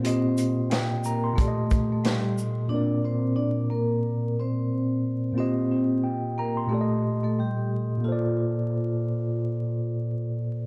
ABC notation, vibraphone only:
X:1
M:4/4
L:1/16
Q:"Swing 16ths" 1/4=90
K:Bb
V:1 name="Vibraphone"
[Cc]4 z2 [B,B] z [A,A]3 [A,A] [G,G]2 z2 | [Dd]2 [Cc]2 [Dd]2 [B,B]4 [Cc]6 | [Cc]4 z2 [B,B] z [A,A]3 [A,A] [G,G]2 z2 | F12 z4 |]